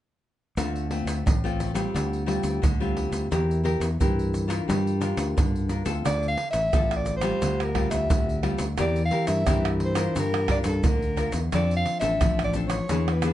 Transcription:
0.57 D2 D3 A3 C4 F4, pandeiro, shaker, surdo
0.76 pandeiro, shaker
0.91 A3 C4 F4, pandeiro
1.05 D2, pandeiro, shaker
1.26 A1 A2, pandeiro, shaker, surdo
1.44 A3 C4 F4, pandeiro, shaker
1.60 pandeiro, shaker
1.74 G3 C4 F4, pandeiro, shaker
1.94 D2 D3, pandeiro, shaker, surdo
2.13 pandeiro, shaker
2.26 G3 C4 F4, pandeiro
2.43 D2, pandeiro, shaker
2.62 D2 D3, pandeiro, shaker, surdo
2.80 G3 C4 F4, pandeiro, shaker
2.97 pandeiro
3.12 D2, pandeiro, shaker
3.31 E2 E3 C4 G4 A#4, pandeiro, shaker, surdo
3.51 pandeiro, shaker
3.64 C4 G4 A#4, pandeiro
3.80 E2, pandeiro, shaker
4.00 G2 E3 C4 G4 A#4, pandeiro, shaker, surdo
4.19 pandeiro, shaker
4.34 pandeiro, shaker
4.48 D4 F4 A#4, pandeiro, shaker
4.68 G2 G3, pandeiro, shaker, surdo
4.87 pandeiro, shaker
5.01 D4 F4 A#4, pandeiro, shaker
5.17 D2, pandeiro, shaker
5.37 G2 D3, pandeiro, shaker, surdo
5.56 pandeiro, shaker
5.69 D4 F4 A#4, pandeiro, shaker
5.85 D2 C4 F4 A4, pandeiro, shaker
6.05 D2 D3 D5, pandeiro, tamborim, shaker, surdo
6.23 pandeiro, shaker
6.28 F5
6.37 pandeiro
6.50 A1 E5, pandeiro, shaker
6.73 A1 A2 C4 F4 A4, pandeiro, tamborim, shaker, surdo
6.91 pandeiro, tamborim, shaker
6.96 D5
7.06 pandeiro, shaker
7.17 C5
7.21 G3 C4 F4, pandeiro, tamborim, shaker
7.42 D2 D3, pandeiro, shaker, surdo
7.60 A#4, pandeiro, tamborim, shaker
7.75 G3 C4 F4, pandeiro, tamborim, surdo
7.90 D2 E5, pandeiro, shaker
8.10 D2 D3, pandeiro, shaker, surdo
8.29 pandeiro, shaker
8.43 G3 C4 F4, pandeiro, tamborim
8.59 D2, pandeiro, shaker
8.78 E2 E3 C4 G4 A#4 D5, pandeiro, tamborim, shaker, surdo
8.96 pandeiro, shaker
9.05 F5
9.11 C4 G4 A#4, pandeiro
9.27 G2 E5, pandeiro, shaker
9.47 G2 E3 C4 G4 A#4, pandeiro, tamborim, shaker, surdo
9.65 pandeiro, tamborim, shaker
9.80 pandeiro
9.84 C5
9.95 D4 F4 A#4, pandeiro, tamborim, shaker
10.15 G2 G3 A#4, pandeiro, shaker, surdo
10.34 pandeiro, tamborim, shaker
10.48 D4 F4 A#4 D5, pandeiro, tamborim, surdo
10.64 G2 A4, pandeiro, shaker
10.84 D2 D3 A#4, pandeiro, shaker, surdo
11.02 pandeiro, shaker
11.17 D4 F4 A#4, pandeiro, tamborim, shaker
11.32 E2, pandeiro, shaker
11.52 F2 F3 C4 D4 A4 D5, pandeiro, tamborim, shaker, surdo
11.71 pandeiro, shaker
11.77 F5
11.86 pandeiro
12.00 A1 C4 D4 A4 E5, pandeiro, shaker
12.21 A1 F3, pandeiro, tamborim, shaker, surdo
12.39 pandeiro, tamborim, shaker
12.44 D5
12.54 C4 D4 A4, pandeiro, shaker
12.68 C#5, pandeiro, tamborim, shaker
12.89 E2 E3 B3 D4 G#4, pandeiro, shaker, surdo
13.08 pandeiro, tamborim, shaker
13.13 B4
13.22 B3 D4 G#4, pandeiro, tamborim, shaker

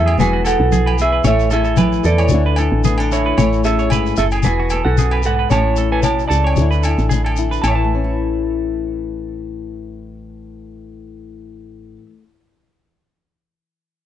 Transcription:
Already playing: E2 F#2 A2 A3 C#4 E4 G#4 E5
0.06 G#4, low agogo
0.18 E1 E2 G#3 B3 F#4 B4 G#5, high conga, shekere
0.33 F#4
0.44 B3 A4 F#5, muted conga, low agogo, shekere
0.60 B1
0.72 G#4, muted nylon-string guitar stroke, high conga, shekere
0.86 B4, low agogo
0.98 B3 G#4 E5, muted conga, shekere
1.12 B4
1.24 A1 A2 A3 A4 C#5 E5, muted nylon-string guitar stroke, muted conga, low agogo, shekere
1.39 shekere
1.51 E4 G#4 A4 E5, muted conga, shekere
1.64 A4, shekere
1.77 E3 B4, muted nylon-string guitar stroke, high conga, low agogo, shekere
1.93 shekere
2.04 E2 E4 A4 D5, shekere
2.18 C#5, low agogo, shekere
2.28 D2, shekere
2.33 D3 D4 E4
2.46 B4
2.56 E4 A4, muted conga, low agogo, shekere
2.72 A1
2.84 A3 B3 G#4, high conga, shekere
2.98 D4 A4, low agogo
3.11 E4 C#5, muted conga, shekere
3.26 B4
3.38 A1 A2 A3 E4 C#5, muted nylon-string guitar stroke, low agogo, shekere
3.53 shekere
3.64 C#4 G#4 A4 E5, shekere
3.79 C#5, shekere
3.90 G#2 B4, low agogo, shekere
4.06 shekere
4.17 F#1 G#4 A4 E5, shekere
4.31 G#4, low agogo, shekere
4.43 E1 E2 B3 F#4 B4 G#5, shekere
4.60 F#4
4.70 B3 A4, low agogo, shekere
4.85 B1 A4 F#5
4.98 F#2 G#4, shekere
5.11 B4, low agogo
5.23 G#2 A4 F#5, shekere
5.39 B4
5.50 A1 A2 C#5 A5, low agogo, shekere
5.54 A3 C#4 E4
5.76 C#4 A4, shekere
5.92 A4 B4 G#5
6.03 B2 C#5 A5, low agogo, shekere
6.19 shekere
6.28 C#2 A4 D5 A5, shekere
6.33 C#3
6.44 C#5, low agogo
6.56 D2 D3, shekere
6.60 D4 E4
6.71 B4, shekere
6.83 E4 A4, low agogo, shekere
6.98 A1, shekere
7.09 A3 G#4, shekere
7.14 D4
7.24 A4, low agogo
7.36 E4, shekere
7.51 B4, shekere
7.62 A1 A2 A4 A5, low agogo, shekere
7.68 C#5 E5
7.74 E3 A5
7.84 A3
7.95 C#4
8.04 E4

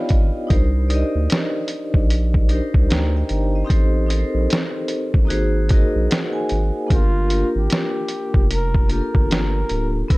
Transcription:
Already playing: B3 D#4 F4 G4 C#5 D5 D#5 F5 G5 B5
0.09 G#1 D#5, kick, closed hi-hat
0.47 C2 D4 D#4 G4, kick, closed hi-hat
0.52 A#4 C5
0.89 D#4 G4 D5, closed hi-hat
0.93 A#4 D#5
1.15 D2
1.30 snare, closed hi-hat
1.68 closed hi-hat
1.94 A#1, kick
2.10 closed hi-hat
2.34 kick
2.49 D4 D#4 G4, closed hi-hat
2.53 A#4 C5
2.74 C2, kick
2.89 D2 G5 A#5, snare, closed hi-hat
3.16 D#5 G5
3.29 G1, closed hi-hat
3.55 C5 D#5
3.64 C4 D#4 G4
3.69 A1 A4 C5, kick, closed hi-hat
4.07 C4 D#4 G4, closed hi-hat
4.11 A4 A#4
4.19 C5
4.34 A#1
4.50 snare, closed hi-hat
4.88 closed hi-hat
5.14 A1, kick
5.25 A#3 D#4 F#4
5.30 G#1 G#4 C5, closed hi-hat
5.69 A#3 D#4 F#4 D#5, kick, closed hi-hat
5.73 G#4 A#4
5.95 A#1
6.10 F#5, snare, closed hi-hat
6.33 G#5
6.49 G#1, closed hi-hat
6.87 A#3 D4 F4, kick, closed hi-hat
6.91 G1 F4 G4 A#4
7.28 A#3 D4 F4, closed hi-hat
7.33 G4 A#4
7.55 G#1 G4
7.70 snare, closed hi-hat
8.08 closed hi-hat
8.34 F1, kick
8.51 A#4, closed hi-hat
8.74 kick
8.88 A#3 D4 F4, closed hi-hat
8.92 G4 A4 A#4
9.00 A#4
9.15 G1, kick
9.31 G1, snare, closed hi-hat
9.69 D1, closed hi-hat
10.08 E1 B3 D4 E4 B4, kick, closed hi-hat
10.13 G#4 A#4

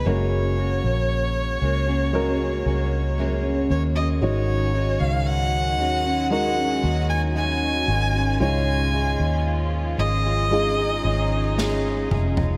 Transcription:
0.05 F#1 F#2 C#3 G#3 A#3 C#4 F#4 A#4 C#5
0.56 G#3 A#3 C#4 F#4
0.84 A#1
1.61 C#2 G#3 A#3 C#4 F#4
1.87 G#3 A#3 C#4 F#4
2.13 F#2 C#3 G#3 A#3 C#4 F#4 A#4
2.39 G#3 A#3 C#4 F#4
2.65 C#2 G#3 A#3 C#4 F#4
3.18 F#2 C#3 G#3 A#3 C#4 F#4
3.69 D#2 G#3 A#3 C#4 F#4 C#5
3.95 G#3 A#3 C#4 F#4 D#5
4.21 G#1 G#2 D#3 F#3 G#3 C#4 D#4 F#4 C#5
4.73 G#3 C#4 D#4 F#4
5.00 C#2 F5
5.26 F#5
5.78 D#2 G#3 C#4 D#4 F#4
6.04 C#4 D#4 F#4
6.30 G#3 C#4 D#4 F#4 A#4 F#5
6.56 C#4 D#4 F#4
6.82 D#2 G#3 C#4 D#4 F#4
7.09 G#5
7.35 G#3 C#4 D#4 F#4 G#5
7.87 G#1 G#3 C#4 D#4 F#4
8.13 C#4 D#4 F#4
8.39 C#2 G#2 F3 G#3 C#4 D#4 F4 G#4 C#5 D#5 G#5
8.91 C#4 F4 G#4 D#5
9.19 D#2
9.97 G#1 C#4 F4 G#4 D#5
10.24 F4 G#4 D#5
10.50 G#3 C#4 D#4 F4 G#4 D#5
10.77 F4 G#4 D#5
11.03 G#1 C#4 F4 G#4 D#5
11.57 C#4 F4 G#4 D#5, snare
12.11 F1 C#4 F4 G#4 D#5, mid tom
12.37 F4 G#4 D#5, floor tom

